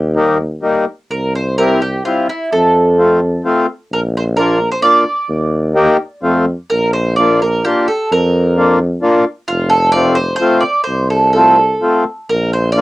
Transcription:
Already playing: tuba D#2, mandolin G4
0.16 accordion G3 A#3 D#4
0.62 accordion G3 A#3 D#4
1.10 tuba C2, mandolin A#4
1.35 mandolin C5
1.58 accordion G3 C4 E4, mandolin A#4
1.82 mandolin G4
2.05 accordion G3 C4 E4, mandolin F4
2.29 mandolin E4
2.53 tuba F2, mandolin A4
2.98 accordion A3 C4 F4
3.45 accordion A3 C4 F4
3.91 tuba A#1, mandolin A#4
4.17 mandolin C5
4.37 accordion A#3 D4 F4, mandolin A#4
4.72 mandolin C5
4.82 accordion A#3 D4 F4, mandolin D5
5.28 tuba D#2
5.75 accordion A#3 D#4 G4
6.22 tuba F2, accordion A3 C4 F4
6.70 tuba A#1, mandolin A#4
6.93 mandolin C5
7.16 accordion A#3 D4 F4, mandolin D5
7.42 mandolin A#4
7.65 accordion A#3 D4 F4, mandolin G4
7.88 mandolin A4
8.12 tuba F2, mandolin A#4
8.57 accordion A#3 D4 F4
9.02 accordion A#3 D4 F4
9.48 tuba F1, mandolin F4
9.70 mandolin A4
9.92 accordion A3 C4 F4, mandolin D5
10.15 mandolin C5
10.36 mandolin C5
10.41 accordion A3 C4 F4
10.61 mandolin D5
10.84 tuba C2, mandolin C5
11.10 mandolin A4
11.33 accordion A3 C4 F4, mandolin A4
11.82 accordion A3 C4 F4
12.29 tuba A#1, mandolin A#4
12.53 mandolin C5
12.72 mandolin D5
12.77 accordion A#3 D4 F4

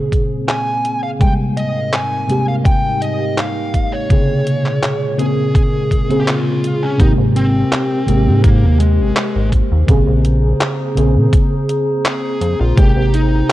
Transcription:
Already playing: ambient pad A#2 G#3 C5, fm electric piano C#3 A#3 C4 G#4
0.12 kick, closed hi-hat
0.48 lead electric guitar G#5, clap, closed hi-hat
0.85 closed hi-hat
1.03 lead electric guitar F5
1.19 ambient pad G#2 C4 D#4 A#4, fm electric piano C3 G3 G#3 A#3, lead electric guitar G5, kick, closed hi-hat
1.57 lead electric guitar D#5, closed hi-hat
1.93 lead electric guitar G#5, clap, closed hi-hat
2.28 fm electric piano C3 G#3 A#3 G4, closed hi-hat
2.48 lead electric guitar F5
2.65 lead electric guitar G5, kick, closed hi-hat
3.02 lead electric guitar D#5, closed hi-hat
3.37 lead electric guitar F5, clap, closed hi-hat
3.74 kick, closed hi-hat
3.93 lead electric guitar C#5
4.09 ambient pad A#2 G#3 A#4, fm electric piano C3 C#3 A#3 G#4, kick, closed hi-hat
4.47 closed hi-hat
4.66 clap
4.83 clap, closed hi-hat
5.18 fm electric piano C#3 A#3 C4 G#4, lead electric guitar G#4, closed hi-hat
5.55 lead electric guitar G#4, kick, closed hi-hat
5.91 kick, closed hi-hat
6.08 fm electric piano C#3 A#3 C4 G#4, closed hi-hat
6.20 lead electric guitar G4
6.28 lead electric guitar F4, clap, closed hi-hat
6.64 closed hi-hat
6.83 lead electric guitar C#4
6.98 analog synth bass G#1, fm electric piano C3 G#3 A#3 G4, lead electric guitar D#4, ambient pad G4 A#4 C5, kick, closed hi-hat
7.18 analog synth bass G#1
7.36 lead electric guitar C4, closed hi-hat
7.72 clap, closed hi-hat
8.06 analog synth bass G#1, fm electric piano C3 G#3 A#3 G4, closed hi-hat
8.27 analog synth bass G#2
8.44 lead electric guitar A#3, kick, closed hi-hat
8.63 analog synth bass D#2
8.80 lead electric guitar G#3, closed hi-hat
8.99 analog synth bass G#1
9.16 clap, closed hi-hat
9.35 analog synth bass G#1
9.52 kick, closed hi-hat
9.72 analog synth bass D#2
9.87 analog synth bass A#1, fm electric piano C#3 A#3 C4 G#4, ambient pad G#4 C5 A#5, kick, closed hi-hat
10.07 analog synth bass A#1
10.25 closed hi-hat
10.61 clap, closed hi-hat
10.95 analog synth bass A#1, fm electric piano C#3 A#3 C4 G#4, closed hi-hat
11.16 analog synth bass A#2
11.33 kick, closed hi-hat
11.69 closed hi-hat
12.05 lead electric guitar G#4, clap, closed hi-hat
12.41 analog synth bass F2, closed hi-hat
12.60 analog synth bass A#1, lead electric guitar F4
12.76 analog synth bass G#1, fm electric piano C3 G#3 A#3 G4, ambient pad G#3 G5, lead electric guitar G4, kick, closed hi-hat
12.96 analog synth bass G#1
13.14 lead electric guitar D#4, closed hi-hat

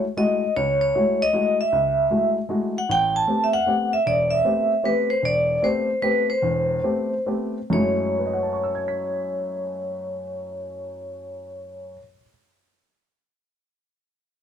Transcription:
0.17 grand piano G#3 A3 E4 F#4, vibraphone D#5
0.56 grand piano C#2, vibraphone C#5
0.81 vibraphone C#5
0.95 grand piano G#3 A3 E4 F#4
1.22 vibraphone D#5
1.33 grand piano G#3 A3 E4 F#4
1.61 vibraphone E5
1.72 grand piano C#2
2.10 grand piano G#3 A3 E4 F#4
2.49 grand piano G#3 A3 E4 F#4
2.78 vibraphone F#5
2.89 grand piano A1, vibraphone G5
3.16 vibraphone A5
3.27 grand piano A3 B3 C4 G4
3.44 vibraphone E5
3.53 vibraphone F#5
3.66 grand piano A3 B3 C4 G4
3.93 vibraphone E5
4.06 grand piano E1, vibraphone D5
4.30 vibraphone E5
4.44 grand piano A3 B3 C4 G4
4.83 grand piano A3 B3 C4 G4, vibraphone B4
5.10 vibraphone C5
5.23 grand piano E1, vibraphone D5
5.62 grand piano A3 B3 C4 G4, vibraphone C5
6.02 grand piano A3 B3 C4 G4, vibraphone B4
6.30 vibraphone C5
6.42 grand piano E1 E2
6.84 grand piano A3 B3 C4 G4
7.26 grand piano A3 B3 C4 G4
7.70 grand piano F#2 F#3 G#3 A3 E4, vibraphone C#5
8.19 grand piano B4
8.26 grand piano D#5
8.33 grand piano F#5
8.43 grand piano A5
8.53 grand piano C#6
8.64 grand piano E6
8.75 grand piano G#6
8.88 grand piano B6

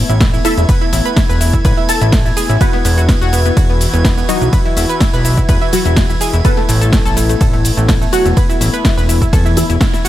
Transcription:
Already playing: analog synth pad A3 B3 E4, synth texture G#6
0.09 analog synth bass A1, synth arpeggio sound E4, closed hi-hat, shaker
0.20 synth arpeggio sound E4, kick, snare, closed hi-hat, ride, shaker
0.34 synth arpeggio sound E4, closed hi-hat, shaker
0.45 synth pluck E4 E5, synth arpeggio sound A4, open hi-hat, shaker
0.58 analog synth bass E1, synth arpeggio sound E4, closed hi-hat, shaker
0.69 synth arpeggio sound B4, kick, closed hi-hat, ride, shaker
0.81 synth arpeggio sound E4, closed hi-hat
0.93 analog synth bass A1, synth arpeggio sound E4, open hi-hat, shaker
1.05 synth arpeggio sound B4, closed hi-hat, shaker
1.16 synth arpeggio sound E4, kick, snare, closed hi-hat, ride, shaker
1.29 analog synth bass E1, synth arpeggio sound B4, closed hi-hat, shaker
1.41 synth arpeggio sound E4, open hi-hat, shaker
1.53 synth arpeggio sound E4, kick, closed hi-hat, shaker
1.65 analog synth bass A1, synth arpeggio sound B4, kick, closed hi-hat, ride, shaker
1.77 synth arpeggio sound E4, closed hi-hat
1.89 synth pluck A4 A5, open hi-hat, shaker
2.01 analog synth bass A1, synth arpeggio sound E4, closed hi-hat, shaker
2.12 synth arpeggio sound E4, kick, snare, closed hi-hat, ride, shaker
2.25 synth arpeggio sound E4, closed hi-hat, shaker
2.37 synth arpeggio sound G#4, open hi-hat, shaker
2.50 analog synth bass A1, synth arpeggio sound E4, closed hi-hat, shaker
2.61 analog synth pad E3 F#4 B4, synth pluck B3 B4, synth arpeggio sound F#4, kick, closed hi-hat, ride, shaker
2.73 synth arpeggio sound B3, snare, closed hi-hat
2.85 analog synth bass E1, synth arpeggio sound B3, open hi-hat, shaker
2.98 synth arpeggio sound F#4, closed hi-hat, shaker
3.09 synth arpeggio sound B3, kick, snare, closed hi-hat, ride, shaker
3.21 analog synth bass E1, synth arpeggio sound F#4, closed hi-hat, shaker
3.33 synth arpeggio sound B3, open hi-hat, shaker
3.46 synth arpeggio sound B3, closed hi-hat, shaker
3.57 analog synth bass E1, synth arpeggio sound F#4, kick, closed hi-hat, ride, shaker
3.70 synth arpeggio sound B3, closed hi-hat
3.81 open hi-hat, shaker
3.94 analog synth bass E1, synth arpeggio sound B3, closed hi-hat, shaker
4.05 synth arpeggio sound B3, kick, snare, closed hi-hat, ride, shaker
4.18 synth arpeggio sound B3, closed hi-hat, shaker
4.29 synth pluck F#3 F#4, synth arpeggio sound D#4, open hi-hat, shaker
4.41 analog synth bass B1, synth arpeggio sound B3, closed hi-hat, shaker
4.53 synth arpeggio sound B4, kick, closed hi-hat, ride, shaker
4.65 synth arpeggio sound E4, closed hi-hat
4.77 analog synth bass E1, synth arpeggio sound E4, open hi-hat, shaker
4.89 synth arpeggio sound B4, closed hi-hat, shaker
5.00 synth arpeggio sound E4, kick, snare, closed hi-hat, ride, shaker
5.13 analog synth bass B1, synth arpeggio sound B4, closed hi-hat, shaker
5.25 synth arpeggio sound E4, open hi-hat, shaker
5.37 synth arpeggio sound E4, kick, closed hi-hat, shaker
5.49 analog synth bass E1, synth arpeggio sound B4, kick, closed hi-hat, ride, shaker
5.61 synth arpeggio sound E4, closed hi-hat
5.73 synth pluck F#3 F#4, open hi-hat, shaker
5.86 analog synth bass E1, synth arpeggio sound E4, closed hi-hat, shaker
5.96 synth arpeggio sound E4, kick, snare, closed hi-hat, ride, shaker
6.10 synth arpeggio sound E4, closed hi-hat, shaker
6.21 synth arpeggio sound G#4, open hi-hat, shaker
6.33 analog synth bass E1, synth arpeggio sound E4, closed hi-hat, shaker
6.45 analog synth pad A3 B3, synth pluck B3 B4, synth arpeggio sound A4, kick, closed hi-hat, ride, shaker
6.57 synth arpeggio sound A3, snare, closed hi-hat
6.69 analog synth bass A1, synth arpeggio sound A3, open hi-hat, shaker
6.81 synth arpeggio sound A4, closed hi-hat, shaker
6.93 synth arpeggio sound A3, kick, snare, closed hi-hat, ride, shaker
7.05 analog synth bass A1, synth arpeggio sound A4, closed hi-hat, shaker
7.17 synth arpeggio sound A3, open hi-hat, shaker
7.29 synth arpeggio sound A3, closed hi-hat, shaker
7.41 analog synth bass A1, synth arpeggio sound A4, kick, closed hi-hat, ride, shaker
7.53 synth arpeggio sound A3, closed hi-hat
7.65 open hi-hat, shaker
7.77 analog synth bass A1, synth arpeggio sound A3, closed hi-hat, shaker
7.88 synth arpeggio sound A3, kick, snare, closed hi-hat, ride, shaker
8.02 synth arpeggio sound A3, closed hi-hat, shaker
8.13 synth pluck F#3 F#4, synth arpeggio sound F#4, open hi-hat, shaker
8.25 analog synth bass E1, synth arpeggio sound A3, closed hi-hat, shaker
8.37 synth arpeggio sound B4, kick, closed hi-hat, ride, shaker
8.49 synth arpeggio sound E4, closed hi-hat, shaker
8.61 analog synth bass A1, synth arpeggio sound E4, open hi-hat, shaker
8.74 synth arpeggio sound B4, closed hi-hat, shaker
8.85 synth arpeggio sound E4, kick, snare, closed hi-hat, ride, shaker
8.97 analog synth bass E1, synth arpeggio sound B4, closed hi-hat, shaker
9.09 synth arpeggio sound E4, open hi-hat, shaker
9.22 synth arpeggio sound E4, kick, closed hi-hat, shaker
9.33 analog synth bass E2, synth arpeggio sound A4, kick, closed hi-hat, ride, shaker
9.46 synth arpeggio sound E4, closed hi-hat, shaker
9.57 synth pluck E3 E4, open hi-hat, shaker
9.69 analog synth bass E1, synth arpeggio sound E4, closed hi-hat, shaker
9.81 synth arpeggio sound E4, kick, snare, closed hi-hat, ride, shaker
9.93 synth arpeggio sound E4, snare, closed hi-hat, shaker
10.05 synth arpeggio sound F#4, open hi-hat, shaker

